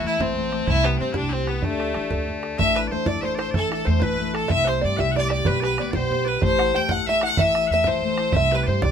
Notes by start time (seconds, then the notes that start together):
Already playing: E3 B3 G4
0.03 E2 A3 E4
0.19 A1 A3 C4, bodhran
0.29 bodhran
0.36 A3, bodhran
0.52 A3, bodhran
0.67 C2 C4 E4, bodhran
0.83 B3 G4, bodhran
0.98 G2 C4 D4
1.12 C2 D4 E4 G4, bodhran
1.17 D4
1.24 bodhran
1.29 C4 E4, bodhran
1.46 B3 G4, bodhran
1.62 D2 A3 D4, bodhran
1.79 A4, bodhran
1.94 A1 D4, bodhran
2.10 D2 A4, bodhran
2.20 bodhran
2.28 D4, bodhran
2.43 A4, bodhran
2.58 A1 A3 E5, bodhran
2.75 E4 B4, bodhran
2.87 A3 C5 D5
2.92 E2 C5
3.05 A1 E4 D5, bodhran
3.15 bodhran
3.21 A3 C5 E5, bodhran
3.35 E4 C5 D5
3.39 C5, bodhran
3.51 A1 E3 A4 D5, bodhran
3.56 A4
3.72 E4 A4, bodhran
3.85 E2 A3 C5
4.00 A1 E4 B4, bodhran
4.11 bodhran
4.20 A3, bodhran
4.33 E4 A4, bodhran
4.48 C2 C4 E5, bodhran
4.64 G4 C5 F#5, bodhran
4.69 C5
4.81 G2 C4 D5
4.97 C2 G4 E5 F#5, bodhran
5.07 bodhran
5.12 C4 F#5, bodhran
5.16 D5
5.29 G4 D5 E5, bodhran
5.33 D5
5.45 B1 B2 B4, bodhran
5.60 G4 B4 D5, bodhran
5.78 D2 B3 D5, bodhran
5.91 G4 C5 D5, bodhran
5.96 B1
6.02 bodhran
6.11 B3 C5, bodhran
6.25 G4 B4 D5
6.41 A1 A3 C5, bodhran
6.59 E4 F#5, bodhran
6.74 E2 A3 G5
6.89 A1 E4 F#5, bodhran
6.98 bodhran
7.07 A3 E5, bodhran
7.21 E4 F#5, bodhran
7.37 A1 E3 E5, bodhran
7.55 E4, bodhran
7.67 E2 E5 F#5
7.71 A3 E5
7.84 A1 E4 C5, bodhran
7.93 bodhran
8.02 A3, bodhran
8.18 E4, bodhran
8.32 C2 C4 E5, bodhran
8.51 G4 B4
8.63 C5 D5
8.67 G2 C4 C5
8.82 C2 G4 D5, bodhran